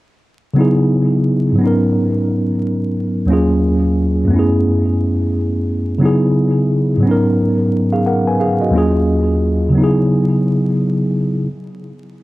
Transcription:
0.54 C#3 F#3 B3
0.58 D#4 E4 G#4
1.52 G#2 F#3
1.58 B3 C#4
1.64 D#4 A#4
3.26 D#2 F#3 A#3
3.30 C#4 F4 G#4
4.25 F#2 A3
4.30 B3 C#4
4.36 E4 G#4
5.98 C#3 F#3 B3
6.03 D#4 E4 G#4
6.97 G#2 F#3
7.03 B3 C#4
7.09 D#4 A#4
7.93 G#4 F5
8.07 A#4 F#5
8.28 B4 G#5
8.40 G#4 F5
8.62 F#4 D#5
8.71 D#2 F#3 A#3
8.75 C#4 F4 G#4
9.70 C#3 F#3
9.75 B3 D#4
9.81 E4 G#4

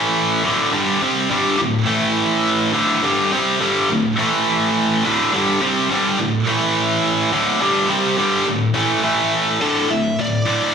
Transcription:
Already playing: A2 E3 A3
0.44 D2 A2 D3
0.73 G2 D3 G3
1.02 C3 G3 C4
1.30 G2 D3 G3
1.59 D2 A2
1.86 A2 E3 A3
2.73 D2 A2 D3
3.03 G2 D3 G3
3.32 C3 G3 C4
3.60 G2 D3 G3
3.90 D2 A2
4.19 A2 E3 A3
5.04 D2 A2 D3
5.33 G2 D3 G3
5.61 C3 G3 C4
5.90 G2 D3 G3
6.19 D2 A2
6.47 A2 E3 A3
7.32 D2 A2 D3
7.61 G2 D3 G3
7.90 C3 G3 C4
8.18 G2 D3 G3
8.46 D2 A2
8.74 A2 E3 A3
9.03 A2 E3 A3
9.61 D2 A2 D3 A4
9.90 D2 A2 E5
10.19 D2 A2 D5
10.45 D2 A2 D3

